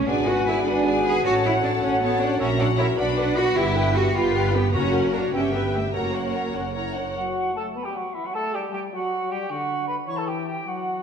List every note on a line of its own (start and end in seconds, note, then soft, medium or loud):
0.07 0.60 G#1 medium
0.07 1.21 B3 medium
0.07 0.27 D4 medium
0.07 2.37 F#4 medium
0.07 0.26 G#4 medium
0.07 0.63 B4 medium
0.07 0.27 D5 medium
0.07 0.62 F#5 medium
0.07 0.63 G#5 medium
0.07 0.27 G#5 medium
0.27 0.47 F#4 medium
0.27 0.47 B4 soft
0.27 0.47 F#5 medium
0.47 0.66 E4 medium
0.47 0.67 G#4 medium
0.47 0.67 D5 medium
0.47 0.67 G#5 medium
0.66 1.18 G#1 medium
0.66 1.04 D4 medium
0.66 1.23 B4 medium
0.66 0.86 B4 medium
0.66 0.87 B4 medium
0.66 1.23 F#5 medium
0.66 0.86 F#5 soft
0.66 1.24 G#5 medium
0.86 1.04 G#4 soft
0.86 1.05 D5 medium
0.86 1.04 G#5 medium
1.05 1.25 G#4 medium
1.05 1.25 B4 soft
1.05 1.25 F#5 medium
1.24 1.76 A1 medium
1.24 2.95 C#4 medium
1.24 1.33 F#4 loud
1.24 1.43 A4 medium
1.24 1.81 C#5 medium
1.24 1.43 C#5 medium
1.24 1.81 F#5 medium
1.24 1.43 A5 medium
1.44 1.53 E4 medium
1.44 1.63 A4 medium
1.44 1.63 C#5 medium
1.44 1.64 F#5 medium
1.62 1.72 D4 medium
1.62 1.82 A4 medium
1.62 1.83 C#5 medium
1.62 1.83 A5 medium
1.82 2.34 A1 medium
1.82 2.02 C#4 medium
1.82 2.02 A4 medium
1.82 2.02 C#5 medium
1.82 2.39 C#5 medium
1.82 2.14 F#5 medium
1.82 2.39 F#5 medium
1.82 2.02 F#5 medium
2.01 2.21 B3 medium
2.01 2.19 A4 medium
2.01 2.20 C#5 medium
2.01 2.21 A5 medium
2.20 2.41 D4 medium
2.20 2.40 A4 medium
2.20 2.40 C#5 medium
2.20 2.41 F#5 medium
2.39 2.91 A#1 medium
2.39 2.49 C#4 medium
2.39 3.55 F#4 medium
2.39 2.58 A#4 medium
2.39 2.49 C#5 medium
2.39 2.58 E5 medium
2.39 2.49 E5 medium
2.39 2.46 F#5 medium
2.39 2.59 A#5 medium
2.58 2.67 D4 medium
2.58 2.67 C#5 medium
2.58 2.79 C#5 medium
2.58 2.67 E5 medium
2.58 2.78 F#5 medium
2.58 2.66 F#5 medium
2.58 2.79 F#5 medium
2.78 2.86 E4 medium
2.78 2.98 A#4 medium
2.78 2.87 C#5 medium
2.78 2.87 E5 medium
2.78 2.98 E5 medium
2.78 2.86 F#5 medium
2.78 2.98 A#5 medium
2.97 3.49 B1 medium
2.97 4.74 B3 medium
2.97 3.36 D4 medium
2.97 3.17 F#4 medium
2.97 3.06 B4 medium
2.97 3.16 D5 medium
2.97 3.07 D5 medium
2.97 3.04 F#5 medium
2.97 3.16 B5 medium
3.17 3.26 B4 medium
3.17 3.37 B4 medium
3.17 3.38 B4 medium
3.17 3.26 D5 medium
3.17 3.37 F#5 medium
3.17 3.24 F#5 medium
3.36 3.57 F#4 medium
3.36 3.57 F#4 loud
3.36 3.46 B4 medium
3.36 3.56 D5 medium
3.36 3.46 D5 medium
3.36 3.44 F#5 medium
3.36 3.56 B5 medium
3.55 4.08 G1 medium
3.55 3.95 E4 medium
3.55 3.65 G4 medium
3.55 3.74 G4 medium
3.55 4.74 G4 medium
3.55 3.74 B4 medium
3.55 3.65 B4 medium
3.55 3.75 E5 medium
3.55 3.62 G5 medium
3.75 3.95 G4 medium
3.75 3.86 G4 medium
3.75 3.85 B4 medium
3.75 3.96 B4 medium
3.75 3.82 G5 medium
3.75 3.96 G5 medium
3.94 4.15 F#4 medium
3.94 4.03 G4 medium
3.94 4.15 G4 medium
3.94 4.03 B4 medium
3.94 4.14 B4 medium
3.94 4.15 E5 medium
3.94 4.02 G5 medium
4.14 4.67 G1 medium
4.14 4.54 F4 medium
4.14 4.23 G4 medium
4.14 4.34 G4 medium
4.14 4.23 B4 medium
4.14 4.33 B4 medium
4.14 4.34 G5 medium
4.14 4.22 G5 medium
4.35 4.44 G4 medium
4.35 4.54 G4 medium
4.35 4.54 B4 medium
4.35 4.44 B4 medium
4.35 4.54 F5 medium
4.35 4.42 G5 medium
4.54 4.74 B3 medium
4.54 4.63 G4 medium
4.54 4.75 G4 medium
4.54 4.63 B4 medium
4.54 4.74 B4 medium
4.54 4.74 G5 medium
4.54 4.60 G5 soft
4.73 5.26 F#1 medium
4.73 5.30 F#2 medium
4.73 5.30 A#3 medium
4.73 5.13 C#4 medium
4.73 4.92 F#4 medium
4.73 5.30 F#4 medium
4.73 4.83 A#4 medium
4.73 4.83 C#5 medium
4.73 4.93 C#5 medium
4.73 4.79 F#5 medium
4.73 4.92 A#5 medium
4.92 5.02 A#4 medium
4.92 5.13 A#4 medium
4.92 5.14 A#4 medium
4.92 5.02 C#5 medium
4.92 5.13 F#5 medium
4.92 4.98 F#5 soft
5.13 5.34 D4 medium
5.13 5.33 F#4 soft
5.13 5.23 A#4 soft
5.13 5.22 C#5 soft
5.13 5.34 C#5 soft
5.13 5.19 F#5 medium
5.13 5.34 A#5 medium
5.33 5.87 G1 medium
5.33 5.93 B3 medium
5.33 5.53 C#4 medium
5.33 5.52 G4 medium
5.33 5.95 G4 medium
5.33 5.42 B4 medium
5.33 5.52 E5 soft
5.33 5.43 E5 soft
5.33 5.39 G5 medium
5.33 5.52 G5 soft
5.52 5.62 B3 medium
5.52 5.63 B4 soft
5.52 5.74 B4 soft
5.52 5.74 E5 soft
5.52 5.63 E5 soft
5.52 5.58 G5 soft
5.52 5.74 G5 soft
5.72 5.82 A3 medium
5.72 5.95 G4 soft
5.72 5.82 B4 soft
5.72 5.84 E5 soft
5.72 5.95 E5 soft
5.72 5.79 G5 soft
5.72 5.95 G5 soft
5.93 6.48 F#1 medium
5.93 6.54 A#3 medium
5.93 6.51 C#4 medium
5.93 6.51 F#4 medium
5.93 6.13 A#4 soft
5.93 6.03 C#5 soft
5.93 6.14 C#5 soft
5.93 5.99 F#5 soft
5.93 6.04 F#5 soft
5.93 6.13 A#5 soft
6.14 6.35 A#4 soft
6.14 6.34 C#5 soft
6.14 6.23 C#5 soft
6.14 6.23 F#5 soft
6.14 6.20 F#5 soft
6.14 6.35 F#5 soft
6.33 6.54 A#4 soft
6.33 6.42 C#5 soft
6.33 6.55 C#5 soft
6.33 6.41 F#5 soft
6.33 6.45 F#5 soft
6.33 6.54 A#5 soft
6.54 7.08 F#1 medium
6.54 6.64 C#4 medium
6.54 6.75 A#4 soft
6.54 6.75 C#5 soft
6.54 6.64 C#5 soft
6.54 6.60 F#5 soft
6.54 6.75 F#5 soft
6.54 6.65 F#5 soft
6.74 6.95 E4 soft
6.74 6.94 A#4 soft
6.74 6.84 C#5 soft
6.74 6.94 C#5 soft
6.74 6.81 F#5 soft
6.74 6.85 F#5 soft
6.74 6.93 A#5 soft
6.94 7.16 D4 soft
6.94 7.15 A#4 soft
6.94 7.04 C#5 soft
6.94 7.15 C#5 soft
6.94 7.15 F#5 soft
6.94 7.01 F#5 soft
6.94 7.05 F#5 soft
7.15 7.53 F#3 medium
7.15 7.53 F#4 medium
7.15 7.52 F#5 soft
7.54 7.74 A3 medium
7.54 7.65 A4 medium
7.54 7.61 A5 medium
7.75 7.85 B3 medium
7.75 7.87 B4 medium
7.75 7.84 B5 soft
7.84 7.91 G3 medium
7.84 7.98 G4 medium
7.84 7.94 G5 soft
7.94 8.05 F#3 soft
7.94 8.16 F#4 medium
7.94 8.14 F#5 soft
8.13 8.25 E3 medium
8.13 8.28 E4 medium
8.13 8.23 E5 soft
8.24 8.34 F#3 medium
8.24 8.35 F#4 medium
8.24 8.33 F#5 medium
8.34 8.54 A3 medium
8.34 8.56 A4 medium
8.34 8.53 A5 medium
8.54 8.69 G3 medium
8.54 8.73 G4 medium
8.54 8.60 G5 medium
8.70 8.90 G3 medium
8.70 8.82 G4 medium
8.70 8.79 G5 medium
8.92 9.30 F#3 medium
8.92 9.33 F#4 medium
8.92 9.30 F#5 medium
9.30 9.50 G3 medium
9.30 9.52 G4 medium
9.30 9.49 G5 medium
9.50 9.98 D3 medium
9.50 9.87 F#4 medium
9.50 9.87 F#5 medium
9.88 9.97 B4 medium
9.88 9.94 B5 medium
10.07 10.56 E3 medium
10.07 10.20 C#5 medium
10.07 10.17 C#6 medium
10.17 10.29 A4 medium
10.17 10.27 A5 medium
10.27 10.47 G4 medium
10.27 10.46 G5 soft
10.47 10.69 G4 medium
10.47 10.66 G5 medium
10.66 11.03 F#3 medium
10.66 11.03 F#4 medium
10.66 11.03 F#5 medium